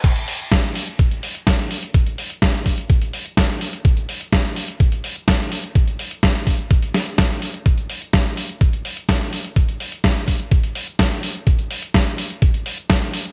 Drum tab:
CC |x---------------|----------------|----------------|----------------|
HH |xxoxxxoxxxoxxxox|xxoxxxoxxxoxxxox|xxoxxxoxxxoxxxox|xxoxxxoxxxoxxxox|
SD |----o-------o---|----o-------o---|----o-------o---|----o-----o-o---|
BD |o---o---o---o---|o---o-o-o---o---|o---o---o---o---|o---o-o-o---o---|

CC |----------------|----------------|----------------|
HH |xxoxxxoxxxoxxxox|xxoxxxoxxxoxxxox|xxoxxxoxxxoxxxox|
SD |----o-------o---|----o-------o---|----o-------o---|
BD |o---o---o---o---|o---o-o-o---o---|o---o---o---o---|